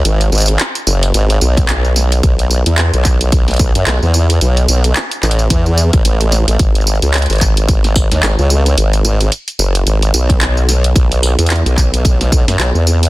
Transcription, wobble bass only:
X:1
M:4/4
L:1/16
Q:"Swing 16ths" 1/4=110
K:G#phr
V:1 name="Wobble bass" clef=bass
G,,,2 G,,,2 z2 F,,,2 G,,,2 B,,,2 B,,,4 | B,,,3 E,,2 B,,,6 F,, B,,, E,,3 | B,,,2 B,,,2 z2 A,,,2 E,,3 A,,, A,,,3 A,,, | G,,,3 C,,2 G,,,6 D,, G,,, C,,3 |
G,,,2 G,,,2 z2 F,,,2 G,,,2 B,,,2 B,,,4 | B,,,3 E,,2 B,,,6 F,, B,,, E,,3 |]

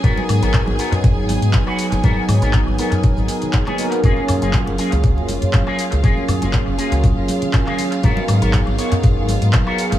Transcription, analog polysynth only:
X:1
M:4/4
L:1/16
Q:"Swing 16ths" 1/4=120
K:G#dor
V:1 name="Analog polysynth"
[F,B,DGA]6 [F,B,DG]8- [F,B,DG]2 | [F,B,DG]6 [F,B,DGA]6- [F,B,DGA] [F,A,B,DG] [F,A,B,DA]2 | [F,A,CEG]6 [F,A,CEG]8- [F,A,CEG]2 | [F,A,CEG]6 [F,A,CEG]8- [F,A,CEG]2 |
[F,B,DGA]6 [F,B,DGA]8- [F,B,DGA]2 |]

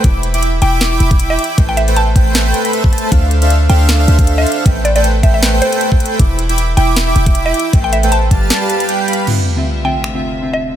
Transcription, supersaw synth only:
X:1
M:4/4
L:1/16
Q:"Swing 16ths" 1/4=156
K:Am
V:1 name="Supersaw synth"
[Eegbd'] z2 [Eegbd'] z2 [Eegbd']3 [Eegbd']2 [Eegbd']2 [Eegbd']3 | [A,ABcg] z2 [A,ABcg] z2 [A,ABcg]3 [A,ABcg]2 [A,ABcb] [A,ABce]2 [A,ABca]2 | [DAcef] z2 [DAcef] z2 [DAcef]3 [DAcef]2 [DAcef]2 [DAcef]3 | [A,ABcg] z2 [A,ABcg] z2 [A,ABcg]3 [A,ABcg]2 [A,ABcg]2 [A,ABcg]3 |
[Eegbd'] z2 [Eegbd'] z2 [Eegbd']3 [Eegbd']2 [Eegbd']2 [Eegbd']3 | [A,ABcg] z2 [A,ABcg] z2 [G,GBfa]3 [G,GBfa]2 [G,GBfa] [G,GBfg]2 [G,GBfb]2 | z16 |]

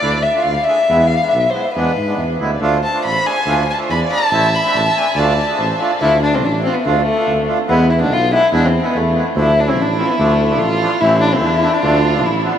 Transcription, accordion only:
X:1
M:2/4
L:1/16
Q:1/4=143
K:none
V:1 name="Accordion"
[A,DE]2 z [A,DF] z2 [A,D^G] z | [^G,B,E]2 z [G,B,D] z2 [G,B,E] z | [^G,B,D]2 z [G,B,D] z2 [G,B,E] z | [A,DF]2 z [A,DF] z2 [A,D^G] z |
[A,DF]2 z [A,DF] z2 [A,D^G] z | [A,CE]2 z [A,CD] z2 [A,CD] z | [A,DF]2 z [A,D^G] z2 [A,DF] z | [A,DF]2 z [A,DF] z2 [A,DF] z |
[A,DF]2 z [A,DF] z2 [A,DF] z | [^G,B,E]2 z [G,B,D] z2 [G,B,D] z | [^G,B,E]2 z [G,B,E] z2 [G,B,E] z | [F,A,D]2 z [F,A,E] z2 [F,A,F] z |
[F,A,D]2 z [F,A,D] z2 [F,A,D] z | [E,A,C]2 z [E,A,C] z2 [E,A,C] z | [F,A,D]2 z [F,A,D] z2 [F,A,B,] z |]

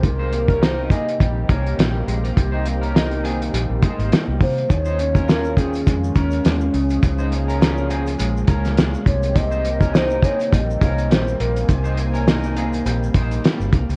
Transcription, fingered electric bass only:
X:1
M:4/4
L:1/16
Q:"Swing 16ths" 1/4=103
K:Ab
V:1 name="Fingered electric bass" clef=bass
C,,8 B,,,2 C,,2 B,,,2 B,,,2 | C,,8 B,,, B,,, z A,,, z C,, C,2 | E,,8 F,,2 E,,2 E,,2 D,,2 | D,,8 B,,,2 D,,4 C,,2- |
C,,8 B,,,2 C,,2 B,,,2 B,,,2 | C,,8 B,,,2 B,,,2 z G,,, C,, D,, |]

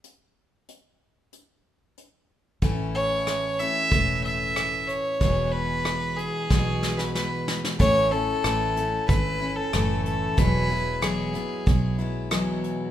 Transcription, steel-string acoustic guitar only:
X:1
M:4/4
L:1/8
Q:1/4=93
K:A
V:1 name="Steel-string acoustic guitar"
z8 | [A,,E,A,CE]3 [A,CE] [A,,E,A,CE]4 | [E,,B,,E,G,B,F]4 [E,,B,,E,G,B,F]4 | [A,,E,A,CE] [A,CE] [A,,E,A,CE] [A,CE] [E,A,CE] [A,CE] [A,,E,A,CE]2 |
[E,,B,,F,G,B,E] [F,G,B,E] [E,,B,,F,G,B,E] [F,G,B,E] [F,G,B,E] [F,G,B,E] [E,,B,,F,G,B,E]2 |]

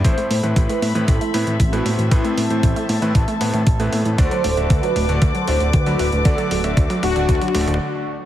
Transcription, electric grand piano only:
X:1
M:4/4
L:1/16
Q:1/4=116
K:Ador
V:1 name="Electric grand piano"
[A,,A,CEc]2 z [A,,A,CEB]4 [A,,A,CEB]2 z [A,,A,CEB]2 z [A,,A,CEB]3 | [A,,A,CEB]2 z [A,,A,CEc]4 [A,,A,CEB]2 z [A,,A,CEB]2 z [A,,A,CEB]3 | [D,A,DFd]2 z [D,A,DFe]4 [D,A,DFd]2 z [D,A,DFd]2 z [D,A,DFd]3 | [D,A,DFd]2 z [D,A,DFe]4 [D,A,DFd]2 z [D,A,DFd]2 z4 |]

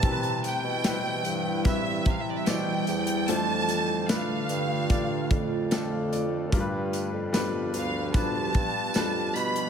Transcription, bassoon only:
X:1
M:4/4
L:1/16
Q:1/4=74
K:C
V:1 name="Bassoon" clef=bass
C,3 B,,3 G,,4 C,2 B,,2 E,,2 | F,,4- F,, z G,,4 F,,6 | G,,3 F,,3 D,,4 G,,2 F,,2 B,,2 |]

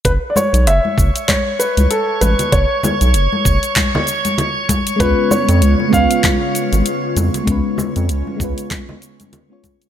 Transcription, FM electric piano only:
X:1
M:4/4
L:1/16
Q:"Swing 16ths" 1/4=97
K:C#phr
V:1 name="FM electric piano"
z16 | z16 | [G,B,C^EB]6 [G,B,CEB]8- [G,B,CEB]2 | [G,B,C^EB]6 [G,B,CEB]6- [G,B,CEB] [G,B,CEc]3 |]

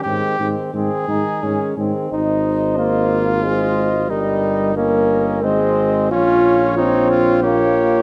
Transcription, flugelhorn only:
X:1
M:3/4
L:1/8
Q:1/4=90
K:Ab
V:1 name="Flugelhorn"
C C C E D C | e4 e2 | e2 e2 e2 | d4 d2 |]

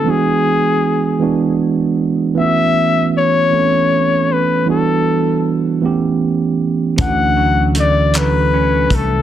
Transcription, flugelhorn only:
X:1
M:6/8
L:1/8
Q:3/8=52
K:Edor
V:1 name="Flugelhorn"
^G4 z2 | e2 c3 B | A2 z4 | f2 d B2 A |]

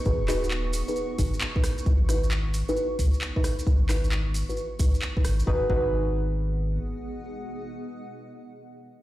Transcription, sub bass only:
X:1
M:4/4
L:1/16
Q:"Swing 16ths" 1/4=133
K:G#m
V:1 name="Sub bass" clef=bass
G,,, D,,,6 z3 G,,, z4 z | C,, G,,,6 z3 C,, z4 z | C,, G,,,6 z3 C,, z3 G,,,2 | G,,, z G,,,8- G,,,2 z4 |
z16 |]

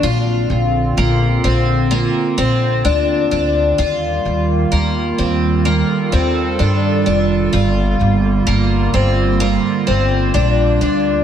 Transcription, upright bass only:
X:1
M:4/4
L:1/16
Q:1/4=64
K:Bb
V:1 name="Upright bass" clef=bass
B,,,2 B,,,2 B,,,2 B,,,3 z B,,,2 D,,2 D,,2 | E,,2 E,,2 E,,2 E,,3 z E,,2 G,,2 F,,,2 | G,,,2 G,,,2 G,,,2 G,,,3 z G,,,2 B,,,2 D,,2 |]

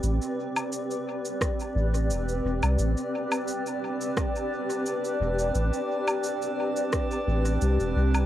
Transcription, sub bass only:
X:1
M:4/4
L:1/16
Q:"Swing 16ths" 1/4=87
K:Am
V:1 name="Sub bass" clef=bass
A,,, z8 z A,,,2 E,,,2 E,,, C,, | A,,, z12 z E,,,2 | A,,, z8 z A,,,2 C,, E,,, C,,2 |]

